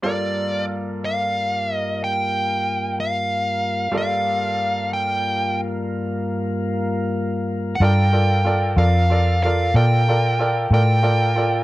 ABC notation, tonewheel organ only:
X:1
M:12/8
L:1/8
Q:3/8=62
K:Gm
V:1 name="Tonewheel organ"
[G,,B,F]12 | [G,,B,F]12 | [FAB]12 |]